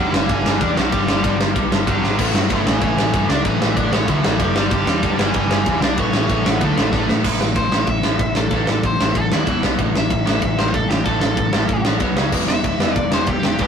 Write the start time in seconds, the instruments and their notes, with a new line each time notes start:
Already playing: picked electric bass E1
0.00 overdriven electric guitar G2 D3 G3
0.11 picked electric bass G1, overdriven electric guitar G2 D3, lead electric guitar E3 E4, snare
0.15 overdriven electric guitar G3
0.26 picked electric bass G1, lead electric guitar E3 E4, overdriven electric guitar G3, kick, ride
0.30 overdriven electric guitar G2 D3
0.45 picked electric bass G1, overdriven electric guitar G2 D3 G3, snare
0.60 picked electric bass E2, overdriven electric guitar G2 D3 G3, lead electric guitar D4 D5, kick, ride
0.75 picked electric bass B1, overdriven electric guitar G2 D3 G3, lead electric guitar F#3 F#4, snare
0.92 picked electric bass G1, overdriven electric guitar G2 D3 G3, lead electric guitar G3 G4, kick, ride
1.08 picked electric bass G1, overdriven electric guitar G2 D3 G3, snare
1.24 picked electric bass G1, overdriven electric guitar G2 D3 G3, kick, ride
1.39 picked electric bass G1, overdriven electric guitar G2 D3 G3, snare
1.55 picked electric bass B1, overdriven electric guitar G2 D3 G3, kick, ride
1.71 picked electric bass G1, overdriven electric guitar G2 D3 G3, snare
1.87 picked electric bass G1, overdriven electric guitar G2 D3 G3, lead electric guitar F#3 F#4, kick, ride
2.03 picked electric bass G#1, overdriven electric guitar G2 D3 G3, snare
2.18 picked electric bass A1, overdriven electric guitar A2 E3 A3, lead electric guitar F#3 F#4, kick, crash
2.34 picked electric bass G2, overdriven electric guitar A2 E3 A3, snare
2.50 picked electric bass G1, overdriven electric guitar A2 E3 A3, kick, ride
2.66 picked electric bass A1, overdriven electric guitar A2 E3 A3, lead electric guitar E3 E4, snare
2.81 picked electric bass A1, overdriven electric guitar A2 E3 A3, lead electric guitar E3 E4, kick, ride
2.97 picked electric bass A1, overdriven electric guitar A2 E3 A3, snare
3.13 picked electric bass G2, overdriven electric guitar A2 E3 A3, kick, ride
3.29 picked electric bass C#2, overdriven electric guitar A2 E3 A3, lead electric guitar D4 D5, snare
3.45 picked electric bass A1, overdriven electric guitar A2 E3 A3, lead electric guitar E3 E4, kick, ride
3.60 picked electric bass A1, overdriven electric guitar A2 E3 A3, snare
3.75 picked electric bass A1, overdriven electric guitar A2 E3 A3, lead electric guitar D4 D5, kick, ride
3.92 picked electric bass A1, overdriven electric guitar A2 E3 A3, lead electric guitar C#4 C#5, snare
4.08 picked electric bass D2, overdriven electric guitar A2 E3 A3, lead electric guitar E3 E4, kick, ride
4.23 picked electric bass A1, overdriven electric guitar A2 E3 A3, snare
4.39 picked electric bass F#1, overdriven electric guitar A2 E3 A3, lead electric guitar G3 G4, kick, ride
4.55 picked electric bass G1, overdriven electric guitar G2 D3 G3, snare
4.71 picked electric bass G1, overdriven electric guitar G2 D3 G3, lead electric guitar G3 G4, kick, ride
4.86 picked electric bass E2, overdriven electric guitar G2 D3 G3, snare
5.03 picked electric bass E1, overdriven electric guitar G2 D3 G3, kick, ride
5.18 picked electric bass G1, overdriven electric guitar G2 D3 G3, lead electric guitar E3 E4, snare
5.33 picked electric bass G1, overdriven electric guitar G2 D3 G3, lead electric guitar E3 E4, kick, ride
5.49 picked electric bass G1, overdriven electric guitar G2 D3 G3, snare
5.65 picked electric bass E2, overdriven electric guitar G2 D3 G3, kick, ride
5.81 picked electric bass B1, overdriven electric guitar G2 D3 G3, lead electric guitar D4 D5, snare
5.97 picked electric bass A1, overdriven electric guitar A2 E3 A3, lead electric guitar C#4 C#5, kick, ride
6.13 picked electric bass A1, overdriven electric guitar A2 E3 A3, snare
6.29 picked electric bass A1, overdriven electric guitar A2 E3 A3, kick, ride
6.44 picked electric bass A1, overdriven electric guitar A2 E3 A3, snare
6.49 lead electric guitar B3 B4
6.61 picked electric bass D2, overdriven electric guitar A2 E3 A3, kick, ride
6.65 lead electric guitar A3 A4
6.76 picked electric bass A1, overdriven electric guitar A2 E3 A3, snare
6.92 picked electric bass A1, overdriven electric guitar A2 E3 A3, kick, snare
7.08 picked electric bass A2, overdriven electric guitar A2 E3 A3, snare
7.23 picked electric bass A1, overdriven electric guitar A2 E3 A3, kick, crash
7.40 picked electric bass A1, overdriven electric guitar A2 E3, snare
7.55 picked electric bass A1, overdriven electric guitar A2 E3, lead electric guitar C5, kick, ride
7.71 picked electric bass A1, overdriven electric guitar A2 E3 A3, snare
7.87 picked electric bass A1, overdriven electric guitar A2 E3, lead electric guitar E5, kick, ride
8.03 picked electric bass A1, overdriven electric guitar A2 E3 A3, snare
8.19 picked electric bass A1, overdriven electric guitar A2 E3, kick, ride
8.35 picked electric bass A1, overdriven electric guitar A2 E3, lead electric guitar A4, snare
8.51 picked electric bass A1, overdriven electric guitar A2 E3 A3, kick, ride
8.67 picked electric bass A1, overdriven electric guitar A2 E3, snare
8.83 picked electric bass A1, overdriven electric guitar A2 E3, lead electric guitar C5, kick, ride
9.00 picked electric bass A1, overdriven electric guitar A2 E3 A3, snare
9.15 picked electric bass A1, overdriven electric guitar A2 E3, lead electric guitar A4, kick, ride
9.31 picked electric bass D#2, overdriven electric guitar A2 E3 A3, lead electric guitar E4, snare
9.47 picked electric bass E1, overdriven electric guitar E2 B2 E3, kick, ride
9.63 picked electric bass B1, overdriven electric guitar B2 F#3 B3, snare
9.79 picked electric bass A1, overdriven electric guitar A2 E3 A3, kick, ride
9.95 picked electric bass A1, overdriven electric guitar A2 E3, lead electric guitar E5, snare
10.10 picked electric bass A1, overdriven electric guitar A2 E3, kick, ride
10.26 picked electric bass A1, overdriven electric guitar A2 E3 A3, snare
10.42 picked electric bass A1, overdriven electric guitar A2 E3, kick, ride
10.58 picked electric bass A1, overdriven electric guitar A2 E3 A3, lead electric guitar C5, snare
10.74 picked electric bass A1, overdriven electric guitar A2 E3, lead electric guitar A4, kick, ride
10.89 picked electric bass A1, overdriven electric guitar A2 E3, lead electric guitar G4, snare
11.04 picked electric bass A1, overdriven electric guitar A2 E3 A3, lead electric guitar A4, kick, ride
11.21 picked electric bass A1, overdriven electric guitar A2 E3, lead electric guitar A4, snare
11.37 picked electric bass A1, overdriven electric guitar A2 E3, kick, ride
11.53 picked electric bass A1, overdriven electric guitar A2 E3 A3, snare
11.68 picked electric bass A1, overdriven electric guitar A2 E3, kick, ride
11.85 picked electric bass A1, overdriven electric guitar A2 E3 A3, snare
12.00 picked electric bass B1, overdriven electric guitar B2 F#3 B3, kick, ride
12.17 picked electric bass C#2, overdriven electric guitar C#3 G#3 C#4, snare
12.32 picked electric bass E1, overdriven electric guitar E2 B2 E3, kick, crash
12.48 picked electric bass E1, overdriven electric guitar E2 B2, lead electric guitar E5, snare
12.64 picked electric bass E1, overdriven electric guitar E2 B2, kick, ride
12.80 picked electric bass E1, overdriven electric guitar E2 B2 E3, snare
12.93 picked electric bass E1, overdriven electric guitar E2 B2, lead electric guitar D5, kick, ride
13.12 picked electric bass E1, overdriven electric guitar E2 B2 E3, lead electric guitar C5, snare
13.27 picked electric bass E1, overdriven electric guitar E2 B2, lead electric guitar G4, kick, ride
13.43 picked electric bass E1, overdriven electric guitar E2 B2, lead electric guitar G4, snare
13.59 picked electric bass E1, overdriven electric guitar E2 B2 E3, lead electric guitar G4, kick, ride